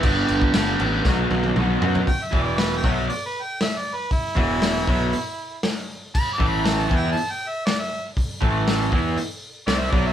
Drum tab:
CC |x-x-x-x---------|----------------|----------------|x---------------|
HH |----------------|o---o---o---o---|o---o---o---o---|----o---o---o---|
SD |----o---o-------|----o-------o---|----o-------o---|----o-------o---|
T1 |----------oo----|----------------|----------------|----------------|
T2 |------------o---|----------------|----------------|----------------|
FT |--------------oo|----------------|----------------|----------------|
BD |o--o----o-------|o-o---o---------|o-o---o---------|o-o---o---------|

CC |----------------|
HH |o---o---o---o---|
SD |----o-------o---|
T1 |----------------|
T2 |----------------|
FT |----------------|
BD |o-o---o-------o-|